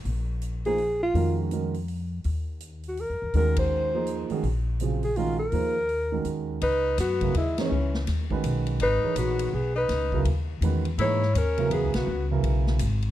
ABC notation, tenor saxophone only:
X:1
M:3/4
L:1/8
Q:"Swing" 1/4=165
K:Ebdor
V:1 name="Tenor saxophone"
z6 | z6 | z6 | z6 |
z6 | z6 | [K:C#dor] D2 B,2 G, E,- | E,2 z4 |
D2 B,2 B, D- | D2 z4 | E2 C2 B, B,- | B, z4 z |]